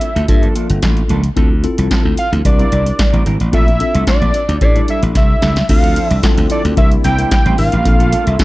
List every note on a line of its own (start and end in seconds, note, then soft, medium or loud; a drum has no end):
0.00 0.44 E5 medium
0.00 muted clean electric guitar stroke soft
0.00 closed hi-hat medium
0.15 0.25 D2 medium
0.15 0.28 A3 soft
0.15 0.28 D4 medium
0.15 0.28 F4 medium
0.15 0.27 A4 medium
0.15 closed hi-hat soft
0.28 0.47 G2 medium
0.28 1.15 A#3 medium
0.28 1.15 D4 medium
0.28 1.15 F4 medium
0.28 1.16 A4 medium
0.28 kick loud
0.28 closed hi-hat medium
0.42 0.54 F3 medium
0.42 0.55 A#3 medium
0.42 0.55 D4 medium
0.42 0.55 A4 medium
0.42 closed hi-hat soft
0.55 0.69 F3 medium
0.55 0.69 A#3 medium
0.55 0.69 D4 medium
0.55 0.69 A4 medium
0.55 closed hi-hat medium
0.70 0.79 G1 medium
0.70 muted clean electric guitar stroke soft
0.70 closed hi-hat medium
0.82 1.01 A1 loud
0.82 kick loud
0.82 snare loud
0.82 clap medium
0.82 closed hi-hat medium
0.97 muted clean electric guitar stroke soft
0.97 closed hi-hat soft
1.09 1.28 C#2 medium
1.09 1.26 F3 medium
1.09 1.23 A#3 medium
1.09 1.23 D4 medium
1.09 1.23 A4 medium
1.09 closed hi-hat medium
1.24 muted clean electric guitar stroke soft
1.24 closed hi-hat soft
1.36 1.65 D2 loud
1.36 1.53 F3 medium
1.36 1.52 C4 medium
1.36 1.50 C4 medium
1.36 1.53 E4 medium
1.36 1.50 E4 medium
1.36 1.53 F4 medium
1.36 1.53 A4 medium
1.36 1.50 A4 medium
1.36 kick loud
1.36 closed hi-hat medium
1.51 muted clean electric guitar stroke medium
1.63 2.25 C4 medium
1.63 2.25 E4 medium
1.63 2.25 F4 medium
1.63 2.25 A4 medium
1.63 muted clean electric guitar stroke soft
1.63 closed hi-hat medium
1.78 1.87 C2 medium
1.78 1.89 F3 medium
1.78 1.90 C4 medium
1.78 1.90 E4 medium
1.78 1.90 A4 medium
1.78 closed hi-hat medium
1.90 2.07 F3 medium
1.90 2.04 C4 medium
1.90 2.04 E4 loud
1.90 2.04 A4 loud
1.90 kick loud
1.90 snare loud
1.90 clap medium
1.90 closed hi-hat medium
2.05 2.14 D2 medium
2.05 muted clean electric guitar stroke soft
2.17 2.31 F5 loud
2.17 muted clean electric guitar stroke soft
2.17 closed hi-hat medium
2.32 2.41 D2 medium
2.32 2.44 F3 soft
2.32 2.44 C4 medium
2.32 2.44 E4 medium
2.32 2.44 A4 medium
2.32 closed hi-hat soft
2.44 2.63 C2 loud
2.44 3.31 D4 medium
2.44 3.32 E4 medium
2.44 3.32 G4 medium
2.44 3.32 A#4 medium
2.44 3.22 D5 loud
2.44 kick loud
2.44 closed hi-hat medium
2.59 2.70 G3 medium
2.59 2.71 C4 medium
2.59 2.71 E4 medium
2.59 2.71 A#4 medium
2.59 closed hi-hat soft
2.71 2.91 C2 medium
2.71 2.85 G3 medium
2.71 2.85 C4 medium
2.71 2.85 E4 medium
2.71 2.85 A#4 medium
2.71 closed hi-hat medium
2.86 muted clean electric guitar stroke medium
2.86 closed hi-hat medium
2.99 muted clean electric guitar stroke soft
2.99 kick loud
2.99 snare loud
2.99 clap medium
2.99 closed hi-hat medium
3.13 3.22 A1 medium
3.13 3.24 G3 medium
3.13 3.25 C4 medium
3.13 3.25 E4 medium
3.13 3.25 A#4 medium
3.13 closed hi-hat soft
3.25 3.36 G#1 medium
3.25 3.39 G3 medium
3.25 3.39 C4 medium
3.25 3.39 E4 medium
3.25 3.39 A#4 medium
3.25 closed hi-hat medium
3.40 3.49 A1 medium
3.40 muted clean electric guitar stroke soft
3.40 closed hi-hat soft
3.52 3.81 A#1 medium
3.52 3.69 A3 medium
3.52 3.69 C4 medium
3.52 3.67 D4 medium
3.52 3.69 D4 medium
3.52 3.69 F4 medium
3.52 3.66 F4 medium
3.52 3.69 A4 medium
3.52 3.66 A4 medium
3.52 4.04 E5 loud
3.52 kick loud
3.52 closed hi-hat medium
3.67 muted clean electric guitar stroke soft
3.67 closed hi-hat soft
3.80 4.41 C4 medium
3.80 4.41 D4 medium
3.80 4.41 F4 medium
3.80 4.41 A4 medium
3.80 muted clean electric guitar stroke medium
3.80 closed hi-hat medium
3.94 4.03 C2 medium
3.94 4.06 A3 medium
3.94 4.06 D4 medium
3.94 4.06 F4 medium
3.94 4.06 A4 medium
3.94 closed hi-hat medium
4.07 4.23 A3 medium
4.07 4.21 D4 medium
4.07 4.20 F4 medium
4.07 4.21 C5 medium
4.07 4.58 D5 loud
4.07 kick loud
4.07 snare loud
4.07 clap medium
4.07 closed hi-hat medium
4.21 4.30 A#1 loud
4.21 muted clean electric guitar stroke soft
4.21 closed hi-hat soft
4.34 muted clean electric guitar stroke soft
4.34 closed hi-hat medium
4.48 4.57 D2 medium
4.48 4.60 A3 soft
4.48 4.60 D4 soft
4.48 4.60 F4 medium
4.48 4.60 A4 soft
4.48 closed hi-hat soft
4.61 4.80 A2 medium
4.61 4.68 C#4 medium
4.61 5.48 E4 medium
4.61 5.48 G4 medium
4.61 5.48 A4 medium
4.61 4.87 D5 medium
4.61 muted clean electric guitar stroke soft
4.61 kick loud
4.61 closed hi-hat medium
4.67 5.51 D4 medium
4.75 4.87 G3 medium
4.75 4.87 D4 medium
4.75 4.87 E4 medium
4.75 4.88 A4 medium
4.75 closed hi-hat soft
4.88 5.01 G3 medium
4.88 5.01 D4 medium
4.88 5.01 E4 medium
4.88 5.01 A4 medium
4.88 5.02 E5 medium
4.88 closed hi-hat medium
5.02 5.11 A1 medium
5.02 muted clean electric guitar stroke soft
5.02 closed hi-hat medium
5.15 5.34 C2 loud
5.15 5.66 E5 loud
5.15 kick loud
5.15 snare medium
5.15 closed hi-hat medium
5.29 muted clean electric guitar stroke soft
5.41 5.61 C#2 medium
5.41 5.58 G3 medium
5.41 5.56 D4 medium
5.41 5.55 E4 medium
5.41 5.55 A4 medium
5.41 snare medium
5.41 closed hi-hat medium
5.56 muted clean electric guitar stroke medium
5.56 snare medium
5.56 closed hi-hat soft
5.69 5.97 D2 loud
5.69 6.76 D3 medium
5.69 6.76 F3 medium
5.69 6.76 C4 medium
5.69 6.00 C4 medium
5.69 6.76 D4 medium
5.69 6.00 D4 medium
5.69 6.00 F4 medium
5.69 6.00 A4 medium
5.69 6.06 F5 loud
5.69 muted clean electric guitar stroke soft
5.69 kick loud
5.69 closed hi-hat medium
5.69 crash medium
5.83 5.94 F3 medium
5.83 5.95 C4 medium
5.83 5.95 E4 medium
5.83 5.96 A4 medium
5.83 closed hi-hat medium
5.96 6.09 F3 medium
5.96 6.09 C4 medium
5.96 6.09 E4 medium
5.96 6.09 A4 medium
5.96 closed hi-hat loud
6.06 6.20 E5 loud
6.10 6.19 C2 medium
6.10 muted clean electric guitar stroke soft
6.10 closed hi-hat medium
6.23 6.77 C4 medium
6.23 6.76 E4 medium
6.23 6.77 F4 medium
6.23 6.77 A4 medium
6.23 kick loud
6.23 snare loud
6.23 clap loud
6.23 closed hi-hat medium
6.37 6.46 D2 medium
6.37 muted clean electric guitar stroke soft
6.37 closed hi-hat medium
6.50 6.67 F3 medium
6.50 6.64 C4 medium
6.50 6.64 E4 medium
6.50 6.63 A4 medium
6.50 6.63 D5 medium
6.50 closed hi-hat medium
6.64 6.73 D2 medium
6.64 muted clean electric guitar stroke soft
6.64 closed hi-hat soft
6.77 6.96 C2 loud
6.77 7.84 C3 medium
6.77 7.84 G3 medium
6.77 8.44 A#3 medium
6.77 7.42 D4 medium
6.77 7.43 E4 medium
6.77 7.84 E4 loud
6.77 7.43 G4 medium
6.77 7.43 A#4 medium
6.77 6.90 E5 loud
6.77 muted clean electric guitar stroke soft
6.77 kick loud
6.77 closed hi-hat medium
6.92 muted clean electric guitar stroke soft
6.92 closed hi-hat medium
7.04 7.23 C2 medium
7.04 7.18 G3 medium
7.04 7.18 C4 loud
7.04 7.18 E4 loud
7.04 7.17 A#4 loud
7.04 7.29 G5 loud
7.04 closed hi-hat medium
7.18 7.30 G3 medium
7.18 7.31 C4 medium
7.18 7.30 E4 medium
7.18 7.30 A#4 medium
7.18 closed hi-hat medium
7.31 7.57 G5 loud
7.31 muted clean electric guitar stroke soft
7.31 kick loud
7.31 snare loud
7.31 clap medium
7.31 closed hi-hat medium
7.46 7.54 A1 medium
7.46 7.57 G3 medium
7.46 7.57 C4 medium
7.46 7.58 E4 medium
7.46 7.59 C5 medium
7.46 closed hi-hat soft
7.58 7.68 G#1 medium
7.58 7.74 D4 medium
7.58 7.74 E4 medium
7.58 7.74 G4 medium
7.58 7.74 A#4 medium
7.58 8.28 F5 loud
7.58 open hi-hat medium
7.72 7.82 A1 medium
7.72 muted clean electric guitar stroke soft
7.72 closed hi-hat medium
7.85 8.14 A#1 medium
7.85 8.44 D3 medium
7.85 8.16 C4 medium
7.85 8.16 D4 medium
7.85 8.16 F4 medium
7.85 8.44 F4 loud
7.85 8.44 A4 medium
7.85 8.16 A4 medium
7.85 muted clean electric guitar stroke soft
7.85 kick loud
7.85 closed hi-hat medium
8.00 8.11 A3 medium
8.00 8.12 D4 medium
8.00 8.12 F4 medium
8.00 8.12 A4 medium
8.00 closed hi-hat medium
8.12 8.26 A3 medium
8.12 8.26 D4 medium
8.12 8.26 F4 medium
8.12 8.26 A4 medium
8.12 closed hi-hat medium
8.27 8.36 C2 loud
8.27 8.44 E5 loud
8.27 muted clean electric guitar stroke soft
8.27 closed hi-hat medium
8.39 8.44 C4 medium
8.39 8.44 D4 medium
8.39 8.44 F4 medium
8.39 8.44 A4 loud
8.39 kick loud
8.39 snare loud
8.39 clap medium
8.39 closed hi-hat medium